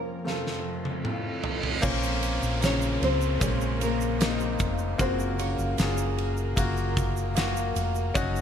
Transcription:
Already playing: F2 F3 A#3 C#4 F4 A#4
0.24 F2 C3 A3 C4 F4 A4, snare, reverse cymbal
0.47 snare
0.85 high tom
1.03 A3 C4 E4, mid tom
1.12 F4
1.44 floor tom
1.63 floor tom
1.82 A#1 A#2 F3 A#3 C4 C#4 A#4 F5 C6, kick, crash, downlifter, shaker
2.03 shaker
2.23 ride, shaker
2.42 A#1, shaker
2.61 C#3 A#3 C#4, snare, ride, shaker
2.65 C#5
2.82 shaker
3.02 C#2 C4 C5, ride
3.21 shaker
3.40 A#1 G#3 A#3 C4 C#4 G#4, kick, ride, shaker
3.61 shaker
3.81 A#3 A#4, ride, shaker
4.01 shaker
4.19 A#3 C4 D#4, snare, ride, shaker
4.40 shaker
4.59 F1, kick, ride, shaker
4.78 shaker
4.98 F#1 C#3 A#3 C4 F4 F#4 A#4 C5 A#5, kick, ride, shaker
5.19 shaker
5.39 C#4 C#5, ride, shaker
5.59 F#1, shaker
5.78 F#1 A#3 F4 G#4, snare, ride, shaker
5.97 shaker
6.18 ride
6.37 shaker
6.56 F#1 A#3 F4 F#4, kick, ride, shaker
6.77 shaker
6.97 kick, ride, shaker
7.17 shaker
7.35 A#3 F4 F#4, snare, ride, shaker
7.57 shaker
7.76 F1, ride, shaker
7.95 shaker
8.14 F#1 F#3 C#4 D#4 F#4, kick, ride, shaker
8.36 shaker

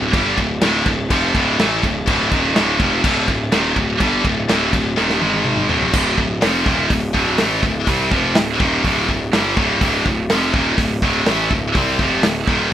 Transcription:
Already playing: D1 D2 A2
0.13 G1 G2 D3 G3, kick, crash
0.37 D1 D2 A2, kick, crash
0.61 D1 D2 A2 D3, snare, crash
0.86 D1 D2 A2, kick, crash
1.10 F1 F2 C3 F3, kick, crash
1.35 D1 D2 A2 D3, kick, crash
1.59 A1 A2 E3 A3, snare, crash
1.83 D1 D2 A2, kick, crash
2.06 D1 D2 A2 D3, kick, crash
2.31 D#1 D#2 A#2 D#3, kick, crash
2.55 D1 D2 A2 D3, snare, crash
2.79 F1 F2 C3 F3, kick, crash
3.03 D1 D2 A2 D3, kick, crash
3.27 D1 D2 A2, kick, crash
3.52 D#1 D#2 A#2 D#3, snare, crash
3.76 D1 D2 A2, kick, crash
4.00 G1 G2 D3 G3, kick, crash
4.24 D1 D2 A2, kick, crash
4.49 D1 D2 A2 D3, snare, crash
4.73 D1 D2 A2, kick, crash
4.96 D#1 D#2 A#2 D#3, snare
5.10 snare
5.20 G#1 G#2 D#3 G#3, high tom
5.33 high tom
5.45 mid tom
5.57 mid tom
5.69 D1 D2 A2 D3, floor tom
5.81 floor tom
5.93 D1 D2 A2 D3, kick, crash
6.17 D1 D2 A2, kick
6.41 F1 F2 C3 F3, snare, open hi-hat
6.65 D#1 D#2 A#2 D#3, kick
6.90 D1 D2 A2, kick, open hi-hat
7.13 D1 D2 A2 D3, kick
7.38 A1 A2 E3 A3, snare, open hi-hat
7.63 D1 D2 A2, kick
7.87 C2 C3 G3 C4, kick, open hi-hat
8.12 F1 F2 C3 F3, kick
8.35 D1 D2 A2, snare, open hi-hat
8.60 D#1 D#2 A#2 D#3, kick
8.84 D1 D2 A2 D3, kick, open hi-hat
9.09 D1 D2 A2, kick
9.33 G1 G2 D3 G3, snare, open hi-hat
9.57 D1 D2 A2 D3, kick
9.81 D1 D2 A2 D3, kick, open hi-hat
10.06 D1 D2 A2, kick
10.30 F1 F2 C3 F3, snare, open hi-hat
10.54 D#1 D#2 A#2 D#3, kick
10.78 D1 D2 A2, kick, open hi-hat
11.02 D1 D2 A2 D3, kick
11.26 A1 A2 E3 A3, snare, open hi-hat
11.51 D1 D2 A2, kick
11.75 C2 C3 G3 C4, kick, open hi-hat
11.99 F1 F2 C3 F3, kick
12.23 D1 D2 A2, snare, open hi-hat
12.47 D#1 D#2 A#2 D#3, kick

